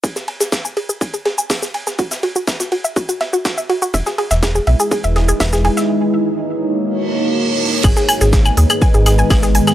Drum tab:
CC |----------------|----------------|----------------|----------------|
RD |x-x-x-x-xxx---x-|x-x-x-x-xxx-x-x-|x-x-x-x-xxx---x-|----------------|
HH |------------o---|----------------|------------o---|----------------|
SH |xx-xxx-xxx-xxx-x|xx-xxx-xxx-xxx-x|xx-xxx-xxx-xxx-x|----------------|
CL |----------------|----------------|----------------|----------------|
SD |-o-oo-----o-oo-o|-o--oo----o-o---|-o-oo-----o-oo-o|----------------|
BD |o---o---o---o---|o---o---o---o---|o---o---o---o---|----------------|

CC |x---------------|
RD |x-x-x-x-xxx---x-|
HH |--o---o---o-o-o-|
SH |xx-xxx-xxx-xxx-x|
CL |x-x--x-x--x-x--x|
SD |-o-oo-----o-oo-o|
BD |o---o---o---o---|